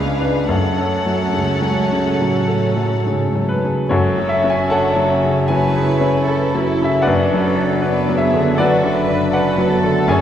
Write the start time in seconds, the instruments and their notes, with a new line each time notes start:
Already playing: grand piano C#2 G#3, cello section C#3, viola section D4, violin section G#4 B4 F5
0.07 viola section G#3
0.20 grand piano D4 B4
0.48 grand piano F#2, cello section F#2, viola section A3 C#4, violin section A4 C#5 F#5
0.78 grand piano A4
1.06 grand piano F#3
1.33 cello section C#2, grand piano C#3
1.62 grand piano F#3
1.92 grand piano C#3
2.20 cello section A2, grand piano F#3
2.47 grand piano A4
2.77 grand piano F#3
3.06 cello section G#2, grand piano C#3
3.35 grand piano F#3
3.49 grand piano B4
3.64 grand piano C#3
3.89 double bass section F#1, grand piano F#2 F#4 A4 C#5, viola section C#4, violin section F#4 A4
4.18 grand piano F#3
4.29 grand piano E5
4.44 grand piano C#4
4.50 grand piano G#5
4.68 viola section D4, violin section A4, grand piano A4 C#5 F#5 A5
4.96 grand piano F#3
5.08 viola section C#4
5.24 grand piano C#3
5.44 viola section C#4, cello section B4, violin section C#5, grand piano G#5
5.49 grand piano F#3, violin section E4
5.76 grand piano C#3
5.87 viola section E4
6.01 grand piano C#4
6.25 cello section A4, grand piano A4, violin section B4
6.55 grand piano F#3
6.62 cello section E4, violin section A4
6.81 grand piano C#3 E5
7.01 double bass section F#1, violin section D4 B4, viola section D4, cello section F#4, grand piano B4 D5 F#5
7.07 grand piano F#2
7.34 grand piano F#3
7.39 viola section C#4, cello section A4
7.57 grand piano D4
7.77 violin section D4 D5, cello section B4
7.81 viola section B3, grand piano B4
8.09 grand piano F#3
8.17 cello section G#4, violin section B4, grand piano E5
8.34 grand piano D3
8.54 viola section D4, violin section F#4 B4, cello section A4, grand piano D5
8.59 grand piano F#3 F#4 B4
8.83 grand piano D3
8.93 violin section B4, cello section B4
9.09 grand piano D4
9.32 viola section C#4, violin section A4, cello section B4, grand piano B4 D5 F#5
9.58 grand piano F#3
9.69 viola section B3, cello section A4
9.84 grand piano D3
10.06 double bass section F#1, grand piano F#2 G#5, viola section C#4, cello section G#4, violin section C#5
10.11 grand piano C#5